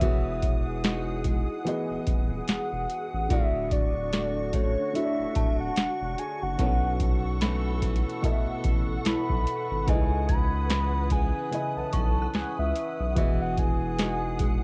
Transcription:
Already playing: nylon-string guitar B3 D#4, soft synth lead E5, synth bell B5 D#6, ambient pad D#6, downlifter
0.00 sub bass E1, felt piano E3 B3 F#4 G#4 F#5, nylon-string guitar E3 F#4, ambient pad G#4 F#5, kick, closed hi-hat
0.43 kick, closed hi-hat
0.84 nylon-string guitar G#3 D#4 F#4, snare, closed hi-hat
1.24 nylon-string guitar G#3, kick, closed hi-hat
1.65 felt piano E3 B3 F#4 G#4 D#5, closed hi-hat
1.90 sub bass D#1
2.07 sub bass D#1, kick, closed hi-hat
2.48 sub bass E1, soft synth lead F#5, snare, closed hi-hat
2.72 sub bass E1
2.90 closed hi-hat
3.14 sub bass A1
3.29 sub bass D1, felt piano D3 A3 E4 F#4 D5, nylon-string guitar D3 F#4, ambient pad D4 F#4 C#6, soft synth lead E5, kick, closed hi-hat
3.71 soft synth lead D5, kick, closed hi-hat
4.12 nylon-string guitar A3 F#4, snare, closed hi-hat
4.53 nylon-string guitar A3, soft synth lead C#5, kick, closed hi-hat
4.93 felt piano D3 A3 E4 F#4 C#5, soft synth lead E5, closed hi-hat
5.03 felt piano D5
5.19 sub bass D1
5.35 sub bass D1, synth bell A5, kick, closed hi-hat
5.60 soft synth lead F#5
5.76 sub bass E1, snare, closed hi-hat
6.01 sub bass E1
6.18 soft synth lead G#5, closed hi-hat
6.42 sub bass F#1, soft synth lead F#5
6.58 sub bass B1, felt piano B2 B3 E4 A4 C#5, nylon-string guitar B2 C#4, ambient pad A4 F#5, kick, closed hi-hat
7.00 kick, closed hi-hat
7.41 nylon-string guitar E3 A3 C#4, synth bell B5, snare, closed hi-hat
7.82 nylon-string guitar E3, kick, closed hi-hat
7.96 closed hi-hat
8.10 closed hi-hat
8.22 felt piano B2 B3 E4 A4 D#5, kick, closed hi-hat
8.32 felt piano E5
8.48 sub bass A1
8.64 sub bass A1, kick, closed hi-hat
9.05 sub bass B1, synth bell E4, soft synth lead B5, snare, closed hi-hat
9.29 sub bass B1, kick
9.47 closed hi-hat
9.71 sub bass G#1
9.87 sub bass C#2, felt piano C#3 C#4 D#4 B4 D#5, nylon-string guitar C#3 D#4, ambient pad B4 D#6, soft synth lead G#5, kick, closed hi-hat
9.95 felt piano E4
10.29 soft synth lead B5, synth bell G#6, kick, closed hi-hat
10.70 nylon-string guitar E3 B3, snare, closed hi-hat
11.10 nylon-string guitar E3, soft synth lead G#5, kick, closed hi-hat
11.51 felt piano C#3 C#4 E4 B4 D#5, closed hi-hat
11.77 sub bass B1, soft synth lead A5
11.93 sub bass B1, synth bell C#6, kick, closed hi-hat
12.22 synth bell F#6
12.34 sub bass C#2, soft synth lead G#5, snare, closed hi-hat
12.59 sub bass C#2, soft synth lead E5
12.76 closed hi-hat
13.00 sub bass B1
13.15 sub bass E1, felt piano E3 B3 F#4 G#4 D#5, nylon-string guitar E3 F#4, ambient pad G#4 F#5, soft synth lead E5, kick, closed hi-hat
13.41 soft synth lead F#5
13.57 soft synth lead G#5, kick, closed hi-hat
13.99 nylon-string guitar G#3 D#4 F#4, snare, closed hi-hat
14.39 nylon-string guitar G#3, kick, closed hi-hat

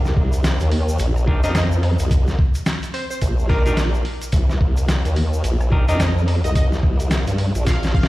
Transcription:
Already playing: wobble bass C2, clean electric guitar D4 D#4 G4 A#4
0.05 snare, shaker
0.17 wobble bass C2, kick
0.33 closed hi-hat, shaker
0.44 snare, closed hi-hat, shaker
0.60 wobble bass D#2, closed hi-hat, shaker
0.71 open hi-hat
0.89 shaker
0.99 wobble bass A#1, closed hi-hat, shaker
1.16 cross-stick, shaker
1.27 clean electric guitar D4 D#4 G4 A#4, kick
1.44 wobble bass F2, clean electric guitar D4 D#4 G4 A#4, digital synth lead D#5, closed hi-hat, shaker
1.55 digital synth lead D#5, snare, closed hi-hat, shaker
1.72 shaker
1.83 cross-stick, open hi-hat
1.99 wobble bass C2, closed hi-hat, shaker
2.11 kick, closed hi-hat, shaker
2.28 snare, shaker
2.39 kick
2.55 closed hi-hat, shaker
2.66 snare, closed hi-hat, shaker
2.83 closed hi-hat, shaker
2.94 digital synth lead C5, open hi-hat
3.10 digital synth lead C5, shaker
3.22 wobble bass A#1, kick, closed hi-hat, shaker
3.39 shaker
3.49 clean electric guitar D4 D#4 G4 A#4, digital synth lead A#4, kick, cross-stick
3.66 clean electric guitar D4 D#4 G4 A#4, closed hi-hat, shaker
3.77 snare, closed hi-hat, shaker
3.94 shaker
4.05 open hi-hat
4.22 closed hi-hat, shaker
4.32 wobble bass C2, kick, closed hi-hat, shaker
4.49 snare, shaker
4.61 wobble bass C2, kick
4.77 closed hi-hat, shaker
4.88 snare, closed hi-hat, shaker
5.05 wobble bass D#2, closed hi-hat, shaker
5.16 open hi-hat
5.33 shaker
5.44 wobble bass A#1, closed hi-hat, shaker
5.60 cross-stick, shaker
5.72 clean electric guitar D4 D#4 G4 A#4, kick
5.88 wobble bass F2, clean electric guitar D4 D#4 G4 A#4, digital synth lead D#5, closed hi-hat, shaker
6.00 digital synth lead D#5, snare, closed hi-hat, shaker
6.18 shaker
6.28 cross-stick, open hi-hat
6.44 wobble bass C2, digital synth lead D#5, closed hi-hat, shaker
6.55 digital synth lead D#5, kick, closed hi-hat, shaker
6.72 snare, shaker
6.83 wobble bass C2, kick
7.00 closed hi-hat, shaker
7.11 snare, closed hi-hat, shaker
7.27 wobble bass G2, closed hi-hat, shaker
7.38 open hi-hat
7.55 wobble bass A#1, closed hi-hat, shaker
7.66 digital synth lead F5, kick, snare, closed hi-hat, shaker
7.83 snare, closed hi-hat, shaker
7.94 digital synth lead F5, kick
8.03 snare

